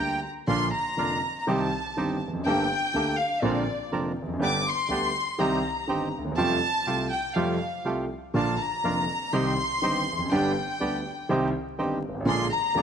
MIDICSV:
0, 0, Header, 1, 5, 480
1, 0, Start_track
1, 0, Key_signature, -2, "major"
1, 0, Tempo, 491400
1, 468, Time_signature, 4, 2, 24, 8
1, 12523, End_track
2, 0, Start_track
2, 0, Title_t, "Violin section"
2, 0, Program_c, 0, 48
2, 0, Note_on_c, 0, 82, 68
2, 224, Note_off_c, 0, 82, 0
2, 476, Note_on_c, 0, 84, 97
2, 698, Note_off_c, 0, 84, 0
2, 716, Note_on_c, 0, 82, 92
2, 1331, Note_off_c, 0, 82, 0
2, 1373, Note_on_c, 0, 82, 53
2, 1439, Note_off_c, 0, 82, 0
2, 1452, Note_on_c, 0, 81, 75
2, 2164, Note_off_c, 0, 81, 0
2, 2401, Note_on_c, 0, 79, 104
2, 3072, Note_off_c, 0, 79, 0
2, 3095, Note_on_c, 0, 77, 90
2, 3340, Note_off_c, 0, 77, 0
2, 3340, Note_on_c, 0, 74, 78
2, 3820, Note_off_c, 0, 74, 0
2, 4330, Note_on_c, 0, 86, 105
2, 4538, Note_off_c, 0, 86, 0
2, 4559, Note_on_c, 0, 84, 102
2, 5267, Note_off_c, 0, 84, 0
2, 5272, Note_on_c, 0, 82, 80
2, 5986, Note_off_c, 0, 82, 0
2, 6230, Note_on_c, 0, 81, 110
2, 6907, Note_off_c, 0, 81, 0
2, 6965, Note_on_c, 0, 79, 88
2, 7194, Note_off_c, 0, 79, 0
2, 7197, Note_on_c, 0, 77, 71
2, 7674, Note_off_c, 0, 77, 0
2, 8154, Note_on_c, 0, 81, 94
2, 8378, Note_off_c, 0, 81, 0
2, 8397, Note_on_c, 0, 82, 90
2, 9115, Note_on_c, 0, 84, 103
2, 9118, Note_off_c, 0, 82, 0
2, 10076, Note_off_c, 0, 84, 0
2, 10081, Note_on_c, 0, 79, 82
2, 11033, Note_off_c, 0, 79, 0
2, 11994, Note_on_c, 0, 84, 114
2, 12211, Note_off_c, 0, 84, 0
2, 12226, Note_on_c, 0, 82, 103
2, 12523, Note_off_c, 0, 82, 0
2, 12523, End_track
3, 0, Start_track
3, 0, Title_t, "Bandoneon"
3, 0, Program_c, 1, 23
3, 0, Note_on_c, 1, 79, 83
3, 197, Note_off_c, 1, 79, 0
3, 12523, End_track
4, 0, Start_track
4, 0, Title_t, "Bandoneon"
4, 0, Program_c, 2, 23
4, 473, Note_on_c, 2, 62, 65
4, 474, Note_on_c, 2, 58, 73
4, 478, Note_on_c, 2, 65, 77
4, 674, Note_off_c, 2, 62, 0
4, 675, Note_off_c, 2, 58, 0
4, 677, Note_off_c, 2, 65, 0
4, 953, Note_on_c, 2, 58, 47
4, 957, Note_on_c, 2, 62, 45
4, 960, Note_on_c, 2, 65, 49
4, 1156, Note_off_c, 2, 58, 0
4, 1158, Note_off_c, 2, 62, 0
4, 1159, Note_off_c, 2, 65, 0
4, 1438, Note_on_c, 2, 60, 76
4, 1441, Note_on_c, 2, 63, 69
4, 1444, Note_on_c, 2, 67, 78
4, 1639, Note_off_c, 2, 60, 0
4, 1641, Note_off_c, 2, 63, 0
4, 1642, Note_off_c, 2, 67, 0
4, 1919, Note_on_c, 2, 60, 53
4, 1923, Note_on_c, 2, 63, 48
4, 1928, Note_on_c, 2, 67, 56
4, 2119, Note_off_c, 2, 60, 0
4, 2121, Note_off_c, 2, 63, 0
4, 2123, Note_off_c, 2, 67, 0
4, 2400, Note_on_c, 2, 67, 68
4, 2401, Note_on_c, 2, 58, 72
4, 2402, Note_on_c, 2, 69, 82
4, 2596, Note_off_c, 2, 67, 0
4, 2597, Note_off_c, 2, 58, 0
4, 2598, Note_off_c, 2, 69, 0
4, 2881, Note_on_c, 2, 58, 48
4, 2884, Note_on_c, 2, 67, 45
4, 2884, Note_on_c, 2, 69, 55
4, 3075, Note_off_c, 2, 58, 0
4, 3076, Note_off_c, 2, 67, 0
4, 3077, Note_off_c, 2, 69, 0
4, 3355, Note_on_c, 2, 60, 76
4, 3359, Note_on_c, 2, 62, 73
4, 3360, Note_on_c, 2, 70, 85
4, 3551, Note_off_c, 2, 60, 0
4, 3553, Note_off_c, 2, 62, 0
4, 3554, Note_off_c, 2, 70, 0
4, 3828, Note_on_c, 2, 62, 48
4, 3829, Note_on_c, 2, 60, 53
4, 3831, Note_on_c, 2, 70, 59
4, 4026, Note_off_c, 2, 60, 0
4, 4026, Note_off_c, 2, 62, 0
4, 4027, Note_off_c, 2, 70, 0
4, 4311, Note_on_c, 2, 59, 77
4, 4314, Note_on_c, 2, 67, 81
4, 4316, Note_on_c, 2, 62, 67
4, 4506, Note_off_c, 2, 59, 0
4, 4507, Note_off_c, 2, 67, 0
4, 4508, Note_off_c, 2, 62, 0
4, 4790, Note_on_c, 2, 59, 47
4, 4792, Note_on_c, 2, 62, 46
4, 4792, Note_on_c, 2, 67, 52
4, 4985, Note_off_c, 2, 59, 0
4, 4986, Note_off_c, 2, 62, 0
4, 4986, Note_off_c, 2, 67, 0
4, 5266, Note_on_c, 2, 60, 76
4, 5267, Note_on_c, 2, 63, 69
4, 5268, Note_on_c, 2, 67, 83
4, 5463, Note_off_c, 2, 60, 0
4, 5464, Note_off_c, 2, 63, 0
4, 5464, Note_off_c, 2, 67, 0
4, 5747, Note_on_c, 2, 60, 49
4, 5751, Note_on_c, 2, 63, 46
4, 5752, Note_on_c, 2, 67, 59
4, 5945, Note_off_c, 2, 60, 0
4, 5947, Note_off_c, 2, 63, 0
4, 5948, Note_off_c, 2, 67, 0
4, 6221, Note_on_c, 2, 65, 66
4, 6224, Note_on_c, 2, 57, 71
4, 6227, Note_on_c, 2, 67, 81
4, 6422, Note_off_c, 2, 65, 0
4, 6424, Note_off_c, 2, 57, 0
4, 6425, Note_off_c, 2, 67, 0
4, 6704, Note_on_c, 2, 57, 49
4, 6706, Note_on_c, 2, 67, 49
4, 6708, Note_on_c, 2, 65, 44
4, 6904, Note_off_c, 2, 57, 0
4, 6905, Note_off_c, 2, 67, 0
4, 6906, Note_off_c, 2, 65, 0
4, 7179, Note_on_c, 2, 57, 76
4, 7182, Note_on_c, 2, 65, 72
4, 7184, Note_on_c, 2, 67, 83
4, 7383, Note_off_c, 2, 57, 0
4, 7385, Note_off_c, 2, 65, 0
4, 7386, Note_off_c, 2, 67, 0
4, 7667, Note_on_c, 2, 65, 46
4, 7669, Note_on_c, 2, 57, 51
4, 7671, Note_on_c, 2, 67, 55
4, 7871, Note_off_c, 2, 65, 0
4, 7872, Note_off_c, 2, 57, 0
4, 7873, Note_off_c, 2, 67, 0
4, 8156, Note_on_c, 2, 62, 67
4, 8158, Note_on_c, 2, 58, 68
4, 8160, Note_on_c, 2, 65, 77
4, 8357, Note_off_c, 2, 62, 0
4, 8358, Note_off_c, 2, 58, 0
4, 8359, Note_off_c, 2, 65, 0
4, 8631, Note_on_c, 2, 58, 48
4, 8636, Note_on_c, 2, 62, 46
4, 8636, Note_on_c, 2, 65, 54
4, 8835, Note_off_c, 2, 58, 0
4, 8837, Note_off_c, 2, 62, 0
4, 8838, Note_off_c, 2, 65, 0
4, 9111, Note_on_c, 2, 60, 80
4, 9115, Note_on_c, 2, 67, 84
4, 9117, Note_on_c, 2, 63, 72
4, 9316, Note_off_c, 2, 60, 0
4, 9318, Note_off_c, 2, 67, 0
4, 9319, Note_off_c, 2, 63, 0
4, 9597, Note_on_c, 2, 60, 51
4, 9600, Note_on_c, 2, 67, 53
4, 9601, Note_on_c, 2, 63, 47
4, 9799, Note_off_c, 2, 60, 0
4, 9800, Note_off_c, 2, 67, 0
4, 9801, Note_off_c, 2, 63, 0
4, 10076, Note_on_c, 2, 59, 77
4, 10078, Note_on_c, 2, 67, 83
4, 10079, Note_on_c, 2, 62, 68
4, 10278, Note_off_c, 2, 59, 0
4, 10279, Note_off_c, 2, 62, 0
4, 10279, Note_off_c, 2, 67, 0
4, 10552, Note_on_c, 2, 62, 46
4, 10554, Note_on_c, 2, 59, 50
4, 10555, Note_on_c, 2, 67, 58
4, 10754, Note_off_c, 2, 59, 0
4, 10754, Note_off_c, 2, 62, 0
4, 10755, Note_off_c, 2, 67, 0
4, 11035, Note_on_c, 2, 60, 76
4, 11035, Note_on_c, 2, 63, 70
4, 11038, Note_on_c, 2, 67, 94
4, 11233, Note_off_c, 2, 60, 0
4, 11233, Note_off_c, 2, 63, 0
4, 11234, Note_off_c, 2, 67, 0
4, 11509, Note_on_c, 2, 60, 54
4, 11510, Note_on_c, 2, 67, 59
4, 11511, Note_on_c, 2, 63, 50
4, 11709, Note_off_c, 2, 60, 0
4, 11709, Note_off_c, 2, 67, 0
4, 11710, Note_off_c, 2, 63, 0
4, 11986, Note_on_c, 2, 58, 76
4, 11991, Note_on_c, 2, 62, 71
4, 11994, Note_on_c, 2, 68, 87
4, 12185, Note_off_c, 2, 58, 0
4, 12188, Note_off_c, 2, 62, 0
4, 12189, Note_off_c, 2, 68, 0
4, 12470, Note_on_c, 2, 58, 51
4, 12470, Note_on_c, 2, 68, 58
4, 12472, Note_on_c, 2, 62, 48
4, 12523, Note_off_c, 2, 58, 0
4, 12523, Note_off_c, 2, 62, 0
4, 12523, Note_off_c, 2, 68, 0
4, 12523, End_track
5, 0, Start_track
5, 0, Title_t, "Grand piano"
5, 0, Program_c, 3, 0
5, 0, Note_on_c, 3, 38, 42
5, 0, Note_on_c, 3, 50, 44
5, 0, Note_on_c, 3, 55, 32
5, 0, Note_on_c, 3, 58, 36
5, 0, Note_on_c, 3, 67, 42
5, 182, Note_off_c, 3, 50, 0
5, 182, Note_off_c, 3, 55, 0
5, 183, Note_off_c, 3, 38, 0
5, 183, Note_off_c, 3, 58, 0
5, 185, Note_off_c, 3, 67, 0
5, 462, Note_on_c, 3, 46, 70
5, 463, Note_on_c, 3, 50, 59
5, 464, Note_on_c, 3, 34, 75
5, 465, Note_on_c, 3, 53, 56
5, 466, Note_on_c, 3, 65, 66
5, 467, Note_on_c, 3, 58, 57
5, 669, Note_off_c, 3, 34, 0
5, 669, Note_off_c, 3, 46, 0
5, 669, Note_off_c, 3, 50, 0
5, 670, Note_off_c, 3, 53, 0
5, 671, Note_off_c, 3, 58, 0
5, 671, Note_off_c, 3, 65, 0
5, 946, Note_on_c, 3, 50, 45
5, 946, Note_on_c, 3, 53, 38
5, 950, Note_on_c, 3, 29, 48
5, 950, Note_on_c, 3, 41, 50
5, 950, Note_on_c, 3, 65, 46
5, 951, Note_on_c, 3, 58, 40
5, 1153, Note_off_c, 3, 50, 0
5, 1153, Note_off_c, 3, 53, 0
5, 1154, Note_off_c, 3, 29, 0
5, 1154, Note_off_c, 3, 65, 0
5, 1155, Note_off_c, 3, 41, 0
5, 1155, Note_off_c, 3, 58, 0
5, 1436, Note_on_c, 3, 51, 69
5, 1438, Note_on_c, 3, 48, 78
5, 1438, Note_on_c, 3, 60, 64
5, 1440, Note_on_c, 3, 36, 78
5, 1440, Note_on_c, 3, 55, 64
5, 1442, Note_on_c, 3, 67, 77
5, 1638, Note_off_c, 3, 51, 0
5, 1639, Note_off_c, 3, 48, 0
5, 1639, Note_off_c, 3, 60, 0
5, 1640, Note_off_c, 3, 36, 0
5, 1640, Note_off_c, 3, 55, 0
5, 1641, Note_off_c, 3, 67, 0
5, 1922, Note_on_c, 3, 51, 43
5, 1926, Note_on_c, 3, 43, 51
5, 1927, Note_on_c, 3, 31, 50
5, 1928, Note_on_c, 3, 55, 40
5, 1928, Note_on_c, 3, 60, 41
5, 1931, Note_on_c, 3, 67, 48
5, 2120, Note_off_c, 3, 51, 0
5, 2122, Note_off_c, 3, 43, 0
5, 2123, Note_off_c, 3, 31, 0
5, 2123, Note_off_c, 3, 55, 0
5, 2124, Note_off_c, 3, 60, 0
5, 2125, Note_off_c, 3, 67, 0
5, 2222, Note_on_c, 3, 40, 46
5, 2278, Note_off_c, 3, 40, 0
5, 2278, Note_on_c, 3, 41, 56
5, 2336, Note_off_c, 3, 41, 0
5, 2340, Note_on_c, 3, 42, 65
5, 2397, Note_off_c, 3, 42, 0
5, 2405, Note_on_c, 3, 50, 64
5, 2407, Note_on_c, 3, 57, 59
5, 2408, Note_on_c, 3, 31, 79
5, 2410, Note_on_c, 3, 58, 61
5, 2411, Note_on_c, 3, 43, 78
5, 2411, Note_on_c, 3, 67, 72
5, 2599, Note_off_c, 3, 50, 0
5, 2600, Note_off_c, 3, 31, 0
5, 2600, Note_off_c, 3, 57, 0
5, 2602, Note_off_c, 3, 43, 0
5, 2602, Note_off_c, 3, 58, 0
5, 2602, Note_off_c, 3, 67, 0
5, 2871, Note_on_c, 3, 50, 54
5, 2874, Note_on_c, 3, 38, 50
5, 2874, Note_on_c, 3, 57, 41
5, 2874, Note_on_c, 3, 58, 42
5, 2879, Note_on_c, 3, 67, 47
5, 3071, Note_off_c, 3, 50, 0
5, 3072, Note_off_c, 3, 38, 0
5, 3072, Note_off_c, 3, 57, 0
5, 3072, Note_off_c, 3, 58, 0
5, 3074, Note_off_c, 3, 67, 0
5, 3342, Note_on_c, 3, 50, 70
5, 3345, Note_on_c, 3, 34, 77
5, 3346, Note_on_c, 3, 46, 83
5, 3347, Note_on_c, 3, 58, 65
5, 3347, Note_on_c, 3, 60, 63
5, 3350, Note_on_c, 3, 65, 73
5, 3544, Note_off_c, 3, 50, 0
5, 3546, Note_off_c, 3, 34, 0
5, 3546, Note_off_c, 3, 46, 0
5, 3547, Note_off_c, 3, 58, 0
5, 3547, Note_off_c, 3, 60, 0
5, 3549, Note_off_c, 3, 65, 0
5, 3827, Note_on_c, 3, 29, 55
5, 3827, Note_on_c, 3, 50, 44
5, 3829, Note_on_c, 3, 41, 50
5, 3831, Note_on_c, 3, 58, 41
5, 3832, Note_on_c, 3, 60, 40
5, 3833, Note_on_c, 3, 65, 47
5, 4025, Note_off_c, 3, 29, 0
5, 4025, Note_off_c, 3, 50, 0
5, 4026, Note_off_c, 3, 41, 0
5, 4027, Note_off_c, 3, 58, 0
5, 4028, Note_off_c, 3, 60, 0
5, 4028, Note_off_c, 3, 65, 0
5, 4122, Note_on_c, 3, 40, 48
5, 4174, Note_on_c, 3, 41, 55
5, 4181, Note_off_c, 3, 40, 0
5, 4233, Note_on_c, 3, 42, 71
5, 4237, Note_off_c, 3, 41, 0
5, 4289, Note_on_c, 3, 50, 70
5, 4292, Note_on_c, 3, 55, 60
5, 4293, Note_on_c, 3, 43, 80
5, 4293, Note_on_c, 3, 59, 63
5, 4293, Note_on_c, 3, 67, 76
5, 4294, Note_on_c, 3, 31, 80
5, 4296, Note_off_c, 3, 42, 0
5, 4495, Note_off_c, 3, 50, 0
5, 4497, Note_off_c, 3, 43, 0
5, 4497, Note_off_c, 3, 55, 0
5, 4497, Note_off_c, 3, 59, 0
5, 4497, Note_off_c, 3, 67, 0
5, 4498, Note_off_c, 3, 31, 0
5, 4772, Note_on_c, 3, 50, 51
5, 4775, Note_on_c, 3, 55, 39
5, 4775, Note_on_c, 3, 59, 40
5, 4776, Note_on_c, 3, 38, 55
5, 4780, Note_on_c, 3, 67, 51
5, 4977, Note_off_c, 3, 50, 0
5, 4977, Note_off_c, 3, 55, 0
5, 4978, Note_off_c, 3, 38, 0
5, 4978, Note_off_c, 3, 59, 0
5, 4980, Note_off_c, 3, 67, 0
5, 5260, Note_on_c, 3, 51, 70
5, 5262, Note_on_c, 3, 55, 69
5, 5264, Note_on_c, 3, 36, 85
5, 5264, Note_on_c, 3, 48, 85
5, 5264, Note_on_c, 3, 60, 65
5, 5266, Note_on_c, 3, 67, 76
5, 5460, Note_off_c, 3, 51, 0
5, 5462, Note_off_c, 3, 36, 0
5, 5462, Note_off_c, 3, 48, 0
5, 5462, Note_off_c, 3, 55, 0
5, 5462, Note_off_c, 3, 60, 0
5, 5463, Note_off_c, 3, 67, 0
5, 5737, Note_on_c, 3, 51, 43
5, 5742, Note_on_c, 3, 43, 52
5, 5742, Note_on_c, 3, 55, 42
5, 5743, Note_on_c, 3, 31, 48
5, 5744, Note_on_c, 3, 60, 40
5, 5745, Note_on_c, 3, 67, 49
5, 5940, Note_off_c, 3, 51, 0
5, 5942, Note_off_c, 3, 43, 0
5, 5942, Note_off_c, 3, 55, 0
5, 5943, Note_off_c, 3, 31, 0
5, 5943, Note_off_c, 3, 60, 0
5, 5944, Note_off_c, 3, 67, 0
5, 6041, Note_on_c, 3, 38, 47
5, 6100, Note_off_c, 3, 38, 0
5, 6105, Note_on_c, 3, 39, 55
5, 6162, Note_off_c, 3, 39, 0
5, 6168, Note_on_c, 3, 40, 69
5, 6224, Note_off_c, 3, 40, 0
5, 6226, Note_on_c, 3, 48, 67
5, 6228, Note_on_c, 3, 55, 58
5, 6231, Note_on_c, 3, 53, 71
5, 6231, Note_on_c, 3, 57, 63
5, 6232, Note_on_c, 3, 41, 76
5, 6233, Note_on_c, 3, 65, 69
5, 6425, Note_off_c, 3, 48, 0
5, 6426, Note_off_c, 3, 55, 0
5, 6427, Note_off_c, 3, 41, 0
5, 6427, Note_off_c, 3, 53, 0
5, 6427, Note_off_c, 3, 57, 0
5, 6428, Note_off_c, 3, 65, 0
5, 6707, Note_on_c, 3, 48, 54
5, 6708, Note_on_c, 3, 55, 39
5, 6711, Note_on_c, 3, 36, 54
5, 6716, Note_on_c, 3, 57, 40
5, 6716, Note_on_c, 3, 65, 49
5, 6906, Note_off_c, 3, 55, 0
5, 6908, Note_off_c, 3, 36, 0
5, 6909, Note_off_c, 3, 48, 0
5, 6910, Note_off_c, 3, 57, 0
5, 6910, Note_off_c, 3, 65, 0
5, 7186, Note_on_c, 3, 48, 67
5, 7187, Note_on_c, 3, 53, 78
5, 7188, Note_on_c, 3, 55, 61
5, 7189, Note_on_c, 3, 57, 61
5, 7190, Note_on_c, 3, 41, 80
5, 7190, Note_on_c, 3, 65, 76
5, 7387, Note_off_c, 3, 48, 0
5, 7388, Note_off_c, 3, 53, 0
5, 7388, Note_off_c, 3, 55, 0
5, 7389, Note_off_c, 3, 41, 0
5, 7389, Note_off_c, 3, 57, 0
5, 7389, Note_off_c, 3, 65, 0
5, 7663, Note_on_c, 3, 48, 54
5, 7664, Note_on_c, 3, 36, 54
5, 7666, Note_on_c, 3, 55, 40
5, 7667, Note_on_c, 3, 57, 40
5, 7672, Note_on_c, 3, 65, 50
5, 7869, Note_off_c, 3, 36, 0
5, 7869, Note_off_c, 3, 48, 0
5, 7870, Note_off_c, 3, 55, 0
5, 7871, Note_off_c, 3, 57, 0
5, 7873, Note_off_c, 3, 65, 0
5, 8144, Note_on_c, 3, 50, 64
5, 8144, Note_on_c, 3, 53, 61
5, 8147, Note_on_c, 3, 46, 77
5, 8149, Note_on_c, 3, 34, 75
5, 8150, Note_on_c, 3, 58, 61
5, 8150, Note_on_c, 3, 65, 70
5, 8351, Note_off_c, 3, 50, 0
5, 8351, Note_off_c, 3, 53, 0
5, 8353, Note_off_c, 3, 46, 0
5, 8354, Note_off_c, 3, 34, 0
5, 8354, Note_off_c, 3, 58, 0
5, 8354, Note_off_c, 3, 65, 0
5, 8631, Note_on_c, 3, 50, 43
5, 8632, Note_on_c, 3, 53, 39
5, 8633, Note_on_c, 3, 41, 52
5, 8637, Note_on_c, 3, 29, 52
5, 8637, Note_on_c, 3, 58, 42
5, 8638, Note_on_c, 3, 65, 49
5, 8835, Note_off_c, 3, 50, 0
5, 8835, Note_off_c, 3, 53, 0
5, 8836, Note_off_c, 3, 41, 0
5, 8838, Note_off_c, 3, 29, 0
5, 8838, Note_off_c, 3, 58, 0
5, 8839, Note_off_c, 3, 65, 0
5, 9111, Note_on_c, 3, 55, 63
5, 9112, Note_on_c, 3, 36, 81
5, 9112, Note_on_c, 3, 51, 74
5, 9113, Note_on_c, 3, 60, 64
5, 9116, Note_on_c, 3, 48, 80
5, 9117, Note_on_c, 3, 67, 82
5, 9316, Note_off_c, 3, 55, 0
5, 9317, Note_off_c, 3, 36, 0
5, 9317, Note_off_c, 3, 51, 0
5, 9317, Note_off_c, 3, 60, 0
5, 9319, Note_off_c, 3, 48, 0
5, 9319, Note_off_c, 3, 67, 0
5, 9588, Note_on_c, 3, 31, 50
5, 9589, Note_on_c, 3, 51, 44
5, 9590, Note_on_c, 3, 43, 49
5, 9593, Note_on_c, 3, 55, 42
5, 9594, Note_on_c, 3, 60, 40
5, 9594, Note_on_c, 3, 67, 51
5, 9794, Note_off_c, 3, 31, 0
5, 9795, Note_off_c, 3, 43, 0
5, 9795, Note_off_c, 3, 51, 0
5, 9797, Note_off_c, 3, 55, 0
5, 9797, Note_off_c, 3, 60, 0
5, 9797, Note_off_c, 3, 67, 0
5, 9889, Note_on_c, 3, 40, 49
5, 9950, Note_on_c, 3, 41, 59
5, 9953, Note_off_c, 3, 40, 0
5, 10014, Note_off_c, 3, 41, 0
5, 10014, Note_on_c, 3, 42, 63
5, 10076, Note_off_c, 3, 42, 0
5, 10076, Note_on_c, 3, 50, 67
5, 10076, Note_on_c, 3, 55, 66
5, 10078, Note_on_c, 3, 43, 82
5, 10080, Note_on_c, 3, 31, 81
5, 10082, Note_on_c, 3, 59, 60
5, 10083, Note_on_c, 3, 67, 77
5, 10278, Note_off_c, 3, 50, 0
5, 10278, Note_off_c, 3, 55, 0
5, 10279, Note_off_c, 3, 43, 0
5, 10280, Note_off_c, 3, 31, 0
5, 10281, Note_off_c, 3, 59, 0
5, 10282, Note_off_c, 3, 67, 0
5, 10552, Note_on_c, 3, 55, 42
5, 10555, Note_on_c, 3, 50, 54
5, 10558, Note_on_c, 3, 38, 50
5, 10559, Note_on_c, 3, 59, 44
5, 10561, Note_on_c, 3, 67, 53
5, 10754, Note_off_c, 3, 55, 0
5, 10756, Note_off_c, 3, 38, 0
5, 10757, Note_off_c, 3, 50, 0
5, 10757, Note_off_c, 3, 59, 0
5, 10758, Note_off_c, 3, 67, 0
5, 11029, Note_on_c, 3, 51, 72
5, 11030, Note_on_c, 3, 55, 69
5, 11031, Note_on_c, 3, 36, 87
5, 11032, Note_on_c, 3, 60, 70
5, 11033, Note_on_c, 3, 48, 87
5, 11038, Note_on_c, 3, 67, 86
5, 11230, Note_off_c, 3, 51, 0
5, 11230, Note_off_c, 3, 55, 0
5, 11231, Note_off_c, 3, 36, 0
5, 11232, Note_off_c, 3, 48, 0
5, 11232, Note_off_c, 3, 60, 0
5, 11235, Note_off_c, 3, 67, 0
5, 11511, Note_on_c, 3, 31, 56
5, 11513, Note_on_c, 3, 43, 57
5, 11513, Note_on_c, 3, 51, 48
5, 11514, Note_on_c, 3, 55, 45
5, 11516, Note_on_c, 3, 60, 43
5, 11518, Note_on_c, 3, 67, 52
5, 11710, Note_off_c, 3, 31, 0
5, 11711, Note_off_c, 3, 43, 0
5, 11711, Note_off_c, 3, 51, 0
5, 11711, Note_off_c, 3, 55, 0
5, 11712, Note_off_c, 3, 60, 0
5, 11713, Note_off_c, 3, 67, 0
5, 11807, Note_on_c, 3, 31, 50
5, 11860, Note_on_c, 3, 32, 58
5, 11866, Note_off_c, 3, 31, 0
5, 11920, Note_on_c, 3, 33, 76
5, 11922, Note_off_c, 3, 32, 0
5, 11966, Note_on_c, 3, 50, 73
5, 11971, Note_on_c, 3, 46, 84
5, 11972, Note_on_c, 3, 34, 79
5, 11972, Note_on_c, 3, 56, 64
5, 11973, Note_on_c, 3, 58, 61
5, 11974, Note_on_c, 3, 65, 79
5, 11982, Note_off_c, 3, 33, 0
5, 12175, Note_off_c, 3, 50, 0
5, 12178, Note_off_c, 3, 34, 0
5, 12178, Note_off_c, 3, 46, 0
5, 12178, Note_off_c, 3, 56, 0
5, 12179, Note_off_c, 3, 58, 0
5, 12179, Note_off_c, 3, 65, 0
5, 12448, Note_on_c, 3, 41, 57
5, 12448, Note_on_c, 3, 50, 49
5, 12449, Note_on_c, 3, 65, 49
5, 12450, Note_on_c, 3, 58, 45
5, 12452, Note_on_c, 3, 56, 45
5, 12453, Note_on_c, 3, 29, 56
5, 12523, Note_off_c, 3, 29, 0
5, 12523, Note_off_c, 3, 41, 0
5, 12523, Note_off_c, 3, 50, 0
5, 12523, Note_off_c, 3, 56, 0
5, 12523, Note_off_c, 3, 58, 0
5, 12523, Note_off_c, 3, 65, 0
5, 12523, End_track
0, 0, End_of_file